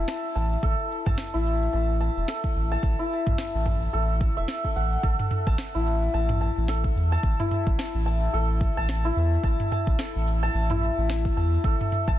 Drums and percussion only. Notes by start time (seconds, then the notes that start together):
0.08 snare, cabasa
0.36 cabasa
0.52 cabasa
0.63 kick, cabasa
0.91 cabasa
1.06 kick, mid tom, cabasa
1.18 snare
1.46 cabasa
1.63 cabasa
1.74 cabasa
2.01 cabasa
2.18 cabasa
2.28 snare, cabasa
2.44 kick
2.57 cabasa
2.73 cabasa
2.83 kick, cabasa
3.12 cabasa
3.27 kick, mid tom, cabasa
3.38 snare
3.66 kick, mid tom, cabasa
3.83 cabasa
3.94 cabasa
4.21 kick, cabasa
4.37 cabasa
4.48 snare
4.64 kick
4.76 cabasa
4.92 cabasa
5.03 kick, cabasa
5.19 mid tom
5.31 mid tom, cabasa
5.47 kick, cabasa
5.58 snare
5.86 cabasa
6.02 cabasa
6.14 cabasa
6.29 mid tom
6.42 cabasa
6.58 cabasa
6.68 snare, cabasa
6.84 kick
6.97 cabasa
7.13 cabasa
7.23 kick, cabasa
7.40 mid tom
7.51 mid tom, cabasa
7.67 kick, cabasa
7.79 snare
8.08 cabasa
8.24 cabasa
8.35 cabasa
8.61 kick, cabasa
8.79 cabasa
8.89 snare, cabasa
9.17 cabasa
9.33 cabasa
9.44 kick, cabasa
9.60 mid tom
9.72 mid tom, cabasa
9.87 kick, cabasa
9.99 snare
10.27 cabasa
10.43 cabasa
10.55 cabasa
10.70 mid tom
10.83 cabasa
10.99 cabasa
11.10 snare, cabasa
11.25 kick
11.38 cabasa
11.54 cabasa
11.64 kick, cabasa
11.81 mid tom
11.92 mid tom, cabasa
12.08 kick, cabasa